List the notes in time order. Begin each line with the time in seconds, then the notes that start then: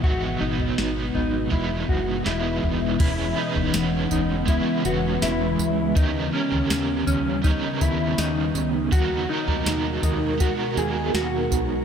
Already playing: B2 G#5
0.03 G#1 G#2 D#3 F#3 G#3 B3 D#4 F#4, kick, floor tom
0.39 G#1 F#3 B3 D#4
0.59 floor tom
0.78 G#1, snare
1.15 G#1 D#4, floor tom
1.51 E1 E3 G#3 B3 D#4 E4, kick, floor tom
1.89 F#1 F#4, kick
2.24 E1 E3 G#3 B3 D#4 E4, snare
2.63 E1, floor tom
2.99 E1 C#3 E3 G#3 B3 C#4 E4 G#4 B4, kick, floor tom, crash, tambourine
3.36 C#4 D#4 G#4 B4
3.55 E1, floor tom
3.74 E1 F#5, snare, tambourine
4.11 E1 D#4, floor tom, tambourine
4.46 G#3 C#4 E4, kick, floor tom, tambourine
4.51 G#4 B4
4.84 E1 F#4 B4, tambourine
5.22 E1 E4, snare, tambourine
5.59 C#2, floor tom, tambourine
5.96 D#2 D#3 G3 B3 C#4 D#4 G4 A#4, kick, floor tom, tambourine
6.32 C#4 G4 A#4
6.52 D#2, floor tom
6.70 D#2, snare, tambourine
7.07 D#2 C#4, floor tom, tambourine
7.42 B3 C#4 D#4, kick, floor tom, tambourine
7.47 G4 A#4
7.81 D#2 E4, kick, tambourine
8.18 D#2 D#4, snare, tambourine
8.55 C#2, floor tom, tambourine
8.92 D#2 B2 D#3 G#3 B3 D#4 F#4 A#4, kick, floor tom, tambourine
9.28 D#4 F#4 A#4 C#5
9.48 D#2, floor tom
9.66 D#2, snare, tambourine
10.03 D#2 D#4, floor tom, tambourine
10.38 B3 D#4 F#4, kick, floor tom, tambourine
10.44 F#4 A#4
10.77 D#2 G#4, tambourine
11.14 D#2 F#4 G#4, snare, tambourine
11.51 B1, floor tom, tambourine